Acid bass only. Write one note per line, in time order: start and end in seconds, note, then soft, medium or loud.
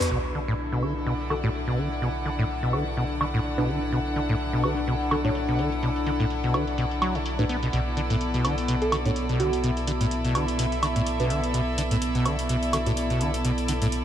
0.11 0.19 B2 medium
0.35 0.39 D3 medium
0.48 0.54 A2 medium
0.72 0.84 B2 medium
0.83 0.94 D3 medium
1.07 1.14 B2 medium
1.30 1.35 D3 medium
1.44 1.49 A2 medium
1.67 1.79 B2 medium
1.78 1.89 D3 medium
2.02 2.09 B2 medium
2.26 2.30 D3 medium
2.39 2.45 A2 medium
2.63 2.75 B2 medium
2.73 2.84 D3 medium
2.97 3.04 B2 medium
3.21 3.25 D3 medium
3.34 3.40 A2 medium
3.58 3.70 B2 medium
3.68 3.79 D3 medium
3.92 4.00 B2 medium
4.16 4.20 D3 medium
4.29 4.35 A2 medium
4.53 4.65 B2 medium
4.64 4.75 D3 medium
4.87 4.95 B2 medium
5.11 5.16 D3 medium
5.25 5.30 A2 loud
5.48 5.60 B2 medium
5.59 5.70 D3 medium
5.83 5.90 B2 medium
6.07 6.11 D3 medium
6.20 6.26 A2 medium
6.44 6.56 B2 medium
6.54 6.65 D3 medium
6.78 6.85 B2 medium
7.02 7.17 F#3 medium
7.15 7.19 B2 medium
7.39 7.45 A2 medium
7.49 7.57 B3 medium
7.63 7.68 B2 medium
7.73 7.81 B2 medium
7.97 8.01 D3 medium
8.10 8.16 A2 medium
8.34 8.46 B2 medium
8.45 8.56 D3 medium
8.68 8.76 B2 medium
8.92 8.97 D3 medium
9.06 9.11 A2 medium
9.29 9.41 B2 medium
9.40 9.51 D3 medium
9.64 9.71 B2 medium
9.88 9.92 D3 medium
10.01 10.07 A2 medium
10.25 10.37 B2 medium
10.35 10.46 D3 medium
10.59 10.66 B2 medium
10.83 10.87 D3 medium
10.96 11.02 A2 medium
11.20 11.32 B2 medium
11.30 11.41 D3 medium
11.54 11.61 B2 medium
11.78 11.82 D3 medium
11.91 11.97 A2 medium
12.15 12.27 B2 medium
12.26 12.37 D3 medium
12.49 12.57 B2 medium
12.73 12.78 D3 medium
12.87 12.92 A2 medium
13.10 13.22 B2 medium
13.21 13.32 D3 medium
13.45 13.52 B2 medium
13.68 13.73 D3 medium
13.82 13.88 A2 medium